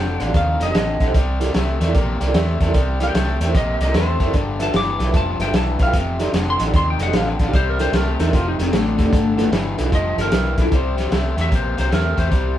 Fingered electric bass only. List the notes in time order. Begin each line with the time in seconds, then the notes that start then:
Already playing: F1
0.20 A1
0.34 D#2
0.60 F1
0.75 A1
1.00 A#1
1.15 C2
1.55 C2
1.80 E2
1.94 A#1
2.20 C2
2.34 E2
2.61 E2
2.75 C2
3.14 C2
3.40 E2
3.55 A#1
3.80 C2
3.94 E2
4.20 F1
4.34 G1
4.74 G1
5.00 B1
5.14 F1
5.39 G1
5.53 B1
5.80 B1
5.94 F1
6.33 F1
6.59 A1
6.74 D#2
6.99 F1
7.13 A1
7.40 A1
7.54 C2
7.92 C2
8.19 E2
8.34 F1
8.59 F1
8.73 A1
8.99 F1
9.12 G1
9.52 G1
9.79 B1
9.92 F1
10.18 G1
10.32 B1
10.58 B1
10.72 C2
11.11 C2
11.37 E2
11.52 A#1
11.78 C2
11.92 E2
12.18 E2
12.32 C2